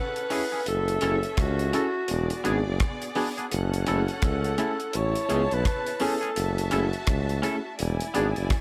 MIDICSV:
0, 0, Header, 1, 7, 480
1, 0, Start_track
1, 0, Key_signature, 3, "minor"
1, 0, Tempo, 712589
1, 447, Time_signature, 4, 2, 24, 8
1, 5798, End_track
2, 0, Start_track
2, 0, Title_t, "Alto saxophone"
2, 0, Program_c, 0, 65
2, 0, Note_on_c, 0, 71, 112
2, 454, Note_off_c, 0, 71, 0
2, 460, Note_on_c, 0, 69, 111
2, 948, Note_on_c, 0, 66, 90
2, 958, Note_off_c, 0, 69, 0
2, 1897, Note_off_c, 0, 66, 0
2, 2860, Note_on_c, 0, 69, 97
2, 3339, Note_on_c, 0, 73, 108
2, 3349, Note_off_c, 0, 69, 0
2, 3727, Note_on_c, 0, 71, 104
2, 3737, Note_off_c, 0, 73, 0
2, 4058, Note_on_c, 0, 69, 93
2, 4068, Note_off_c, 0, 71, 0
2, 4532, Note_off_c, 0, 69, 0
2, 5798, End_track
3, 0, Start_track
3, 0, Title_t, "String section"
3, 0, Program_c, 1, 48
3, 0, Note_on_c, 1, 61, 90
3, 0, Note_on_c, 1, 69, 90
3, 0, Note_on_c, 1, 78, 99
3, 427, Note_off_c, 1, 78, 0
3, 428, Note_off_c, 1, 61, 0
3, 428, Note_off_c, 1, 69, 0
3, 447, Note_on_c, 1, 61, 83
3, 447, Note_on_c, 1, 76, 91
3, 449, Note_on_c, 1, 69, 85
3, 1388, Note_off_c, 1, 61, 0
3, 1388, Note_off_c, 1, 76, 0
3, 1389, Note_off_c, 1, 69, 0
3, 1414, Note_on_c, 1, 59, 81
3, 1414, Note_on_c, 1, 74, 104
3, 1417, Note_on_c, 1, 68, 88
3, 2351, Note_off_c, 1, 59, 0
3, 2352, Note_off_c, 1, 74, 0
3, 2353, Note_off_c, 1, 68, 0
3, 2368, Note_on_c, 1, 78, 98
3, 2369, Note_on_c, 1, 69, 89
3, 2371, Note_on_c, 1, 61, 93
3, 3308, Note_off_c, 1, 78, 0
3, 3309, Note_off_c, 1, 69, 0
3, 3310, Note_off_c, 1, 61, 0
3, 3326, Note_on_c, 1, 64, 90
3, 3328, Note_on_c, 1, 81, 103
3, 3329, Note_on_c, 1, 73, 89
3, 4267, Note_off_c, 1, 64, 0
3, 4268, Note_off_c, 1, 73, 0
3, 4268, Note_off_c, 1, 81, 0
3, 4288, Note_on_c, 1, 76, 94
3, 4289, Note_on_c, 1, 81, 101
3, 4290, Note_on_c, 1, 66, 89
3, 5228, Note_off_c, 1, 76, 0
3, 5228, Note_off_c, 1, 81, 0
3, 5229, Note_off_c, 1, 66, 0
3, 5243, Note_on_c, 1, 80, 89
3, 5245, Note_on_c, 1, 64, 89
3, 5245, Note_on_c, 1, 74, 88
3, 5798, Note_off_c, 1, 64, 0
3, 5798, Note_off_c, 1, 74, 0
3, 5798, Note_off_c, 1, 80, 0
3, 5798, End_track
4, 0, Start_track
4, 0, Title_t, "Clean electric guitar"
4, 0, Program_c, 2, 27
4, 203, Note_on_c, 2, 61, 89
4, 210, Note_on_c, 2, 64, 91
4, 215, Note_on_c, 2, 68, 92
4, 285, Note_off_c, 2, 61, 0
4, 288, Note_off_c, 2, 64, 0
4, 291, Note_off_c, 2, 68, 0
4, 350, Note_on_c, 2, 68, 56
4, 357, Note_on_c, 2, 64, 49
4, 361, Note_on_c, 2, 61, 42
4, 400, Note_off_c, 2, 68, 0
4, 404, Note_off_c, 2, 64, 0
4, 406, Note_off_c, 2, 61, 0
4, 687, Note_on_c, 2, 61, 104
4, 693, Note_on_c, 2, 64, 106
4, 697, Note_on_c, 2, 69, 123
4, 767, Note_off_c, 2, 61, 0
4, 770, Note_off_c, 2, 64, 0
4, 772, Note_off_c, 2, 69, 0
4, 1167, Note_on_c, 2, 61, 86
4, 1172, Note_on_c, 2, 64, 96
4, 1178, Note_on_c, 2, 69, 93
4, 1247, Note_off_c, 2, 61, 0
4, 1249, Note_off_c, 2, 64, 0
4, 1253, Note_off_c, 2, 69, 0
4, 1643, Note_on_c, 2, 59, 83
4, 1650, Note_on_c, 2, 62, 82
4, 1655, Note_on_c, 2, 68, 98
4, 1725, Note_off_c, 2, 59, 0
4, 1728, Note_off_c, 2, 62, 0
4, 1731, Note_off_c, 2, 68, 0
4, 2126, Note_on_c, 2, 59, 92
4, 2131, Note_on_c, 2, 62, 92
4, 2135, Note_on_c, 2, 68, 91
4, 2207, Note_off_c, 2, 59, 0
4, 2209, Note_off_c, 2, 62, 0
4, 2211, Note_off_c, 2, 68, 0
4, 2273, Note_on_c, 2, 68, 58
4, 2278, Note_on_c, 2, 62, 48
4, 2284, Note_on_c, 2, 59, 44
4, 2322, Note_off_c, 2, 68, 0
4, 2325, Note_off_c, 2, 62, 0
4, 2327, Note_off_c, 2, 59, 0
4, 2604, Note_on_c, 2, 61, 84
4, 2611, Note_on_c, 2, 64, 100
4, 2616, Note_on_c, 2, 69, 96
4, 2686, Note_off_c, 2, 61, 0
4, 2689, Note_off_c, 2, 64, 0
4, 2692, Note_off_c, 2, 69, 0
4, 3086, Note_on_c, 2, 61, 90
4, 3091, Note_on_c, 2, 64, 102
4, 3096, Note_on_c, 2, 69, 94
4, 3166, Note_off_c, 2, 61, 0
4, 3169, Note_off_c, 2, 64, 0
4, 3172, Note_off_c, 2, 69, 0
4, 3565, Note_on_c, 2, 57, 86
4, 3568, Note_on_c, 2, 61, 85
4, 3574, Note_on_c, 2, 68, 87
4, 3646, Note_off_c, 2, 57, 0
4, 3647, Note_off_c, 2, 61, 0
4, 3650, Note_off_c, 2, 68, 0
4, 4042, Note_on_c, 2, 57, 92
4, 4049, Note_on_c, 2, 61, 92
4, 4052, Note_on_c, 2, 68, 100
4, 4124, Note_off_c, 2, 57, 0
4, 4128, Note_off_c, 2, 61, 0
4, 4130, Note_off_c, 2, 68, 0
4, 4183, Note_on_c, 2, 68, 54
4, 4191, Note_on_c, 2, 61, 49
4, 4197, Note_on_c, 2, 57, 42
4, 4237, Note_off_c, 2, 68, 0
4, 4241, Note_off_c, 2, 61, 0
4, 4244, Note_off_c, 2, 57, 0
4, 4521, Note_on_c, 2, 61, 107
4, 4527, Note_on_c, 2, 64, 102
4, 4533, Note_on_c, 2, 69, 113
4, 4604, Note_off_c, 2, 61, 0
4, 4607, Note_off_c, 2, 64, 0
4, 4610, Note_off_c, 2, 69, 0
4, 4999, Note_on_c, 2, 61, 84
4, 5005, Note_on_c, 2, 64, 89
4, 5012, Note_on_c, 2, 69, 99
4, 5083, Note_off_c, 2, 61, 0
4, 5086, Note_off_c, 2, 64, 0
4, 5089, Note_off_c, 2, 69, 0
4, 5483, Note_on_c, 2, 59, 93
4, 5490, Note_on_c, 2, 62, 95
4, 5496, Note_on_c, 2, 68, 82
4, 5564, Note_off_c, 2, 59, 0
4, 5568, Note_off_c, 2, 62, 0
4, 5571, Note_off_c, 2, 68, 0
4, 5798, End_track
5, 0, Start_track
5, 0, Title_t, "FM electric piano"
5, 0, Program_c, 3, 5
5, 207, Note_on_c, 3, 61, 91
5, 207, Note_on_c, 3, 64, 95
5, 208, Note_on_c, 3, 68, 91
5, 208, Note_on_c, 3, 71, 98
5, 313, Note_off_c, 3, 61, 0
5, 313, Note_off_c, 3, 64, 0
5, 313, Note_off_c, 3, 68, 0
5, 313, Note_off_c, 3, 71, 0
5, 686, Note_on_c, 3, 64, 93
5, 687, Note_on_c, 3, 61, 105
5, 689, Note_on_c, 3, 68, 87
5, 689, Note_on_c, 3, 69, 116
5, 793, Note_off_c, 3, 61, 0
5, 793, Note_off_c, 3, 64, 0
5, 794, Note_off_c, 3, 68, 0
5, 794, Note_off_c, 3, 69, 0
5, 1168, Note_on_c, 3, 61, 93
5, 1170, Note_on_c, 3, 64, 84
5, 1170, Note_on_c, 3, 68, 87
5, 1171, Note_on_c, 3, 69, 107
5, 1274, Note_off_c, 3, 61, 0
5, 1274, Note_off_c, 3, 64, 0
5, 1275, Note_off_c, 3, 68, 0
5, 1275, Note_off_c, 3, 69, 0
5, 1649, Note_on_c, 3, 59, 100
5, 1650, Note_on_c, 3, 62, 99
5, 1653, Note_on_c, 3, 66, 98
5, 1655, Note_on_c, 3, 68, 114
5, 1754, Note_off_c, 3, 59, 0
5, 1755, Note_off_c, 3, 62, 0
5, 1756, Note_off_c, 3, 66, 0
5, 1757, Note_off_c, 3, 68, 0
5, 2123, Note_on_c, 3, 62, 93
5, 2124, Note_on_c, 3, 59, 97
5, 2128, Note_on_c, 3, 66, 83
5, 2128, Note_on_c, 3, 68, 102
5, 2231, Note_off_c, 3, 62, 0
5, 2232, Note_off_c, 3, 59, 0
5, 2233, Note_off_c, 3, 68, 0
5, 2234, Note_off_c, 3, 66, 0
5, 2609, Note_on_c, 3, 57, 93
5, 2612, Note_on_c, 3, 61, 89
5, 2612, Note_on_c, 3, 64, 90
5, 2613, Note_on_c, 3, 68, 101
5, 2714, Note_off_c, 3, 57, 0
5, 2716, Note_off_c, 3, 61, 0
5, 2716, Note_off_c, 3, 64, 0
5, 2716, Note_off_c, 3, 68, 0
5, 3084, Note_on_c, 3, 57, 99
5, 3086, Note_on_c, 3, 61, 82
5, 3087, Note_on_c, 3, 64, 94
5, 3088, Note_on_c, 3, 68, 92
5, 3192, Note_off_c, 3, 57, 0
5, 3192, Note_off_c, 3, 61, 0
5, 3193, Note_off_c, 3, 64, 0
5, 3193, Note_off_c, 3, 68, 0
5, 3561, Note_on_c, 3, 59, 114
5, 3561, Note_on_c, 3, 61, 95
5, 3562, Note_on_c, 3, 64, 90
5, 3564, Note_on_c, 3, 68, 110
5, 3670, Note_off_c, 3, 59, 0
5, 3670, Note_off_c, 3, 61, 0
5, 3671, Note_off_c, 3, 64, 0
5, 3672, Note_off_c, 3, 68, 0
5, 4045, Note_on_c, 3, 59, 95
5, 4046, Note_on_c, 3, 61, 92
5, 4048, Note_on_c, 3, 64, 91
5, 4049, Note_on_c, 3, 68, 114
5, 4152, Note_off_c, 3, 59, 0
5, 4152, Note_off_c, 3, 61, 0
5, 4153, Note_off_c, 3, 64, 0
5, 4154, Note_off_c, 3, 68, 0
5, 4529, Note_on_c, 3, 57, 95
5, 4529, Note_on_c, 3, 61, 98
5, 4532, Note_on_c, 3, 64, 95
5, 4534, Note_on_c, 3, 68, 107
5, 4634, Note_off_c, 3, 57, 0
5, 4634, Note_off_c, 3, 61, 0
5, 4635, Note_off_c, 3, 64, 0
5, 4636, Note_off_c, 3, 68, 0
5, 5005, Note_on_c, 3, 57, 98
5, 5005, Note_on_c, 3, 61, 85
5, 5008, Note_on_c, 3, 64, 79
5, 5009, Note_on_c, 3, 68, 93
5, 5112, Note_off_c, 3, 57, 0
5, 5112, Note_off_c, 3, 61, 0
5, 5113, Note_off_c, 3, 64, 0
5, 5114, Note_off_c, 3, 68, 0
5, 5491, Note_on_c, 3, 59, 93
5, 5492, Note_on_c, 3, 62, 95
5, 5493, Note_on_c, 3, 68, 121
5, 5494, Note_on_c, 3, 66, 93
5, 5595, Note_off_c, 3, 59, 0
5, 5595, Note_off_c, 3, 62, 0
5, 5596, Note_off_c, 3, 66, 0
5, 5596, Note_off_c, 3, 68, 0
5, 5798, End_track
6, 0, Start_track
6, 0, Title_t, "Tuba"
6, 0, Program_c, 4, 58
6, 451, Note_on_c, 4, 30, 89
6, 676, Note_off_c, 4, 30, 0
6, 690, Note_on_c, 4, 30, 102
6, 827, Note_off_c, 4, 30, 0
6, 933, Note_on_c, 4, 37, 98
6, 1157, Note_off_c, 4, 37, 0
6, 1412, Note_on_c, 4, 28, 102
6, 1547, Note_off_c, 4, 28, 0
6, 1653, Note_on_c, 4, 32, 95
6, 1788, Note_off_c, 4, 32, 0
6, 1800, Note_on_c, 4, 30, 88
6, 1886, Note_off_c, 4, 30, 0
6, 2373, Note_on_c, 4, 30, 103
6, 2597, Note_off_c, 4, 30, 0
6, 2616, Note_on_c, 4, 30, 107
6, 2750, Note_off_c, 4, 30, 0
6, 2852, Note_on_c, 4, 37, 91
6, 3077, Note_off_c, 4, 37, 0
6, 3330, Note_on_c, 4, 33, 97
6, 3467, Note_off_c, 4, 33, 0
6, 3572, Note_on_c, 4, 37, 83
6, 3707, Note_off_c, 4, 37, 0
6, 3716, Note_on_c, 4, 35, 92
6, 3804, Note_off_c, 4, 35, 0
6, 4290, Note_on_c, 4, 30, 94
6, 4516, Note_off_c, 4, 30, 0
6, 4534, Note_on_c, 4, 30, 110
6, 4668, Note_off_c, 4, 30, 0
6, 4769, Note_on_c, 4, 37, 100
6, 4995, Note_off_c, 4, 37, 0
6, 5254, Note_on_c, 4, 28, 106
6, 5388, Note_off_c, 4, 28, 0
6, 5494, Note_on_c, 4, 32, 96
6, 5628, Note_off_c, 4, 32, 0
6, 5642, Note_on_c, 4, 30, 83
6, 5727, Note_off_c, 4, 30, 0
6, 5798, End_track
7, 0, Start_track
7, 0, Title_t, "Drums"
7, 108, Note_on_c, 9, 42, 64
7, 175, Note_off_c, 9, 42, 0
7, 204, Note_on_c, 9, 46, 66
7, 271, Note_off_c, 9, 46, 0
7, 447, Note_on_c, 9, 42, 90
7, 514, Note_off_c, 9, 42, 0
7, 593, Note_on_c, 9, 42, 52
7, 660, Note_off_c, 9, 42, 0
7, 680, Note_on_c, 9, 42, 75
7, 747, Note_off_c, 9, 42, 0
7, 829, Note_on_c, 9, 42, 35
7, 897, Note_off_c, 9, 42, 0
7, 924, Note_on_c, 9, 42, 95
7, 927, Note_on_c, 9, 36, 98
7, 928, Note_on_c, 9, 37, 119
7, 991, Note_off_c, 9, 42, 0
7, 995, Note_off_c, 9, 36, 0
7, 995, Note_off_c, 9, 37, 0
7, 1073, Note_on_c, 9, 42, 51
7, 1140, Note_off_c, 9, 42, 0
7, 1168, Note_on_c, 9, 42, 81
7, 1235, Note_off_c, 9, 42, 0
7, 1402, Note_on_c, 9, 42, 97
7, 1469, Note_off_c, 9, 42, 0
7, 1551, Note_on_c, 9, 42, 58
7, 1618, Note_off_c, 9, 42, 0
7, 1649, Note_on_c, 9, 42, 63
7, 1716, Note_off_c, 9, 42, 0
7, 1885, Note_on_c, 9, 42, 97
7, 1888, Note_on_c, 9, 37, 108
7, 1889, Note_on_c, 9, 36, 113
7, 1953, Note_off_c, 9, 42, 0
7, 1956, Note_off_c, 9, 36, 0
7, 1956, Note_off_c, 9, 37, 0
7, 2032, Note_on_c, 9, 42, 66
7, 2099, Note_off_c, 9, 42, 0
7, 2123, Note_on_c, 9, 46, 70
7, 2190, Note_off_c, 9, 46, 0
7, 2276, Note_on_c, 9, 42, 36
7, 2343, Note_off_c, 9, 42, 0
7, 2368, Note_on_c, 9, 42, 92
7, 2435, Note_off_c, 9, 42, 0
7, 2516, Note_on_c, 9, 42, 54
7, 2584, Note_off_c, 9, 42, 0
7, 2604, Note_on_c, 9, 42, 77
7, 2671, Note_off_c, 9, 42, 0
7, 2750, Note_on_c, 9, 42, 35
7, 2818, Note_off_c, 9, 42, 0
7, 2842, Note_on_c, 9, 42, 99
7, 2846, Note_on_c, 9, 36, 113
7, 2846, Note_on_c, 9, 37, 112
7, 2910, Note_off_c, 9, 42, 0
7, 2914, Note_off_c, 9, 36, 0
7, 2914, Note_off_c, 9, 37, 0
7, 2994, Note_on_c, 9, 42, 54
7, 3061, Note_off_c, 9, 42, 0
7, 3085, Note_on_c, 9, 42, 84
7, 3153, Note_off_c, 9, 42, 0
7, 3231, Note_on_c, 9, 42, 39
7, 3299, Note_off_c, 9, 42, 0
7, 3323, Note_on_c, 9, 42, 96
7, 3391, Note_off_c, 9, 42, 0
7, 3472, Note_on_c, 9, 42, 57
7, 3539, Note_off_c, 9, 42, 0
7, 3567, Note_on_c, 9, 42, 54
7, 3634, Note_off_c, 9, 42, 0
7, 3714, Note_on_c, 9, 42, 34
7, 3782, Note_off_c, 9, 42, 0
7, 3807, Note_on_c, 9, 42, 103
7, 3808, Note_on_c, 9, 36, 106
7, 3810, Note_on_c, 9, 37, 101
7, 3875, Note_off_c, 9, 36, 0
7, 3875, Note_off_c, 9, 42, 0
7, 3878, Note_off_c, 9, 37, 0
7, 3951, Note_on_c, 9, 42, 63
7, 4018, Note_off_c, 9, 42, 0
7, 4040, Note_on_c, 9, 46, 69
7, 4107, Note_off_c, 9, 46, 0
7, 4194, Note_on_c, 9, 42, 39
7, 4262, Note_off_c, 9, 42, 0
7, 4286, Note_on_c, 9, 42, 98
7, 4353, Note_off_c, 9, 42, 0
7, 4434, Note_on_c, 9, 42, 49
7, 4502, Note_off_c, 9, 42, 0
7, 4520, Note_on_c, 9, 42, 80
7, 4588, Note_off_c, 9, 42, 0
7, 4669, Note_on_c, 9, 42, 36
7, 4736, Note_off_c, 9, 42, 0
7, 4761, Note_on_c, 9, 42, 102
7, 4765, Note_on_c, 9, 37, 116
7, 4766, Note_on_c, 9, 36, 109
7, 4828, Note_off_c, 9, 42, 0
7, 4832, Note_off_c, 9, 37, 0
7, 4833, Note_off_c, 9, 36, 0
7, 4912, Note_on_c, 9, 42, 48
7, 4980, Note_off_c, 9, 42, 0
7, 5007, Note_on_c, 9, 42, 78
7, 5075, Note_off_c, 9, 42, 0
7, 5246, Note_on_c, 9, 42, 93
7, 5313, Note_off_c, 9, 42, 0
7, 5392, Note_on_c, 9, 42, 59
7, 5460, Note_off_c, 9, 42, 0
7, 5487, Note_on_c, 9, 42, 58
7, 5555, Note_off_c, 9, 42, 0
7, 5632, Note_on_c, 9, 42, 36
7, 5700, Note_off_c, 9, 42, 0
7, 5726, Note_on_c, 9, 42, 98
7, 5728, Note_on_c, 9, 36, 118
7, 5729, Note_on_c, 9, 37, 111
7, 5794, Note_off_c, 9, 42, 0
7, 5796, Note_off_c, 9, 36, 0
7, 5797, Note_off_c, 9, 37, 0
7, 5798, End_track
0, 0, End_of_file